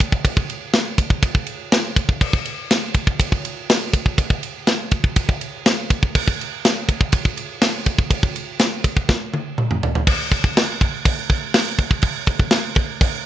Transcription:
0.00 kick medium
0.00 ride medium
0.12 kick medium
0.25 kick loud
0.25 ride loud
0.37 kick medium
0.50 ride medium
0.73 snare loud
0.73 ride medium
0.98 kick medium
0.98 ride medium
1.10 kick medium
1.23 kick loud
1.23 ride loud
1.35 kick medium
1.47 ride medium
1.72 snare loud
1.72 ride loud
1.96 kick medium
1.96 ride medium
2.09 kick medium
2.21 kick loud
2.21 crash loud
2.33 kick medium
2.45 ride medium
2.71 snare loud
2.71 ride loud
2.94 kick medium
2.94 ride medium
3.07 kick medium
3.20 kick loud
3.20 ride loud
3.32 kick medium
3.45 ride medium
3.70 snare loud
3.70 ride loud
3.93 kick medium
3.93 ride medium
4.06 kick medium
4.18 kick loud
4.18 ride loud
4.30 kick medium
4.43 ride medium
4.67 snare loud
4.67 ride medium
4.91 kick medium
4.91 ride medium
5.04 kick medium
5.16 kick loud
5.16 ride loud
5.29 kick medium
5.41 ride medium
5.66 snare loud
5.66 ride loud
5.90 kick medium
5.90 ride medium
6.03 kick medium
6.15 kick loud
6.15 crash loud
6.28 kick medium
6.41 ride medium
6.65 snare loud
6.65 ride loud
6.89 kick medium
6.89 ride medium
7.01 kick medium
7.12 kick loud
7.12 ride loud
7.25 kick medium
7.37 ride medium
7.62 snare loud
7.62 ride loud
7.86 kick medium
7.86 ride medium
7.99 kick medium
8.11 kick loud
8.11 ride loud
8.23 kick medium
8.36 ride medium
8.59 snare loud
8.59 ride medium
8.84 kick medium
8.84 ride medium
8.97 kick medium
9.09 kick loud
9.09 snare medium
9.34 high tom medium
9.58 mid tom loud
9.71 mid tom medium
9.83 floor tom medium
9.95 floor tom medium
10.07 kick loud
10.07 crash loud
10.07 crash medium
10.32 kick medium
10.32 crash medium
10.44 kick medium
10.57 snare loud
10.57 crash medium
10.81 kick medium
10.81 crash medium
11.05 kick loud
11.05 crash loud
11.30 kick loud
11.30 crash medium
11.54 snare loud
11.54 crash loud
11.78 kick medium
11.78 crash medium
11.91 kick medium
12.02 kick loud
12.02 crash medium
12.26 kick medium
12.26 crash medium
12.40 kick medium
12.51 snare loud
12.51 crash medium
12.75 kick loud
12.75 crash medium
13.01 kick loud
13.01 crash medium

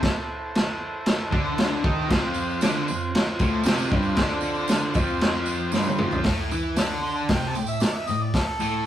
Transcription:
0.00 2.05 E4 medium
0.00 2.05 A4 medium
0.00 2.06 C5 medium
0.00 kick loud
0.00 snare loud
0.00 crash medium
0.55 snare loud
0.55 crash medium
1.06 snare loud
1.06 crash medium
1.31 1.83 D3 medium
1.31 1.83 D4 loud
1.31 kick loud
1.58 snare loud
1.58 crash medium
1.84 2.09 D#3 medium
1.84 2.09 D#4 loud
1.84 kick loud
2.06 2.61 F2 loud
2.06 6.20 C4 medium
2.06 6.21 F4 medium
2.06 6.21 C5 medium
2.06 crash medium
2.11 2.61 F3 loud
2.11 kick loud
2.11 snare loud
2.34 tambourine medium
2.49 tambourine soft
2.61 2.87 D3 loud
2.61 2.87 D4 loud
2.61 snare loud
2.61 tambourine medium
2.61 crash medium
2.74 tambourine soft
2.88 3.09 F2 medium
2.88 tambourine medium
3.15 snare loud
3.15 crash medium
3.39 3.65 A2 loud
3.39 3.65 A3 loud
3.39 kick loud
3.39 tambourine medium
3.64 3.91 C3 loud
3.64 3.91 C4 loud
3.64 snare loud
3.64 tambourine loud
3.64 crash medium
3.78 tambourine medium
3.90 4.16 G2 medium
3.90 4.17 G3 loud
3.90 kick loud
4.03 tambourine soft
4.15 4.93 D3 loud
4.15 4.94 D4 loud
4.15 kick loud
4.15 snare loud
4.15 tambourine soft
4.15 crash medium
4.28 tambourine soft
4.41 tambourine medium
4.54 tambourine soft
4.68 snare loud
4.68 tambourine loud
4.68 crash medium
4.94 5.72 F2 medium
4.94 5.73 F3 loud
4.94 kick loud
4.94 tambourine medium
5.07 tambourine soft
5.19 snare loud
5.19 tambourine soft
5.19 crash medium
5.33 tambourine soft
5.46 tambourine medium
5.58 tambourine soft
5.70 5.98 G2 medium
5.70 5.99 G3 loud
5.70 6.20 C6 medium
5.70 snare medium
5.70 tambourine medium
5.83 high tom medium
5.83 tambourine medium
5.97 6.25 F2 medium
5.97 6.25 F3 medium
5.97 mid tom loud
5.97 tambourine soft
6.11 floor tom loud
6.11 tambourine soft
6.24 6.51 A2 medium
6.24 6.51 A3 loud
6.24 kick loud
6.24 snare loud
6.24 open hi-hat medium
6.51 6.77 E3 loud
6.51 6.77 E4 loud
6.51 tambourine medium
6.76 7.29 D3 medium
6.76 7.29 D4 loud
6.76 snare loud
6.76 open hi-hat medium
6.76 tambourine medium
6.90 tambourine soft
7.03 7.19 C6 loud
7.16 7.35 A5 medium
7.16 tambourine soft
7.28 7.55 C3 medium
7.28 7.55 C4 loud
7.28 kick loud
7.28 snare loud
7.28 open hi-hat medium
7.28 tambourine soft
7.33 7.44 G5 medium
7.47 7.58 A5 medium
7.55 7.77 A2 medium
7.55 7.67 G5 medium
7.55 tambourine medium
7.67 7.83 E5 loud
7.67 tambourine medium
7.80 7.97 D5 medium
7.80 snare loud
7.80 open hi-hat medium
7.80 tambourine loud
7.95 8.09 E5 loud
8.07 8.29 A2 medium
8.07 8.24 D#5 medium
8.07 tambourine medium
8.22 8.33 D5 medium
8.34 8.86 A4 loud
8.34 kick loud
8.34 snare loud
8.34 open hi-hat medium
8.60 8.85 A2 loud
8.60 8.86 A3 loud
8.60 tambourine medium

